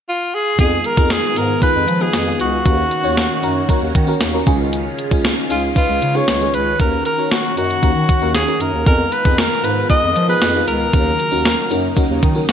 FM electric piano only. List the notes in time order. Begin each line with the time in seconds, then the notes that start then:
0.58 B3 D#4 F4 G#4
0.97 B3 D#4 F4 G#4
1.36 B3 D#4 F4 G#4
1.62 B3 D#4 F4 G#4
2.00 B3 D#4 F4 G#4
2.26 B3 D#4 F4 G#4
2.65 D#3 C#4 D#4 F#4 A#4
3.04 C#4 D#4 F#4 C#5
3.43 C#4 D#4 F#4 A#4
3.69 C#4 D#4 F#4 A#4
4.07 C#4 D#4 F#4 A#4
4.33 C#4 D#4 F#4 A#4
4.46 C#3 C#4 D#4 F4 G#4
5.11 C#4 D#4 F4 G#4
5.50 C#4 D#4 F4 G#4
5.75 C#4 D#4 F4 B4
6.14 C#4 D#4 F4 G#4
6.40 C#4 D#4 F4 G#4
6.79 D#3 C#4 D#4 F#4 A#4
7.18 C#4 D#4 F#4 C#5
7.57 C#4 D#4 F#4 A#4
7.83 C#4 D#4 F#4 A#4
8.21 C#4 D#4 F#4 A#4
8.47 C#4 D#4 F#4 A#4
8.86 B3 D#4 F4 G#4
9.25 B3 D#4 F4 G#4
9.63 B3 D#4 F4 A#4
9.89 B3 D#4 F4 G#4
10.28 B3 D#4 F4 G#4
10.54 B3 D#4 F4 G#4
10.93 D#3 C#4 D#4 F#4 A#4
11.31 C#4 D#4 F#4 A#4
11.70 C#4 D#4 F#4 A#4
11.96 C#4 D#4 F#4 A#4
12.35 C#4 D#4 F#4 A#4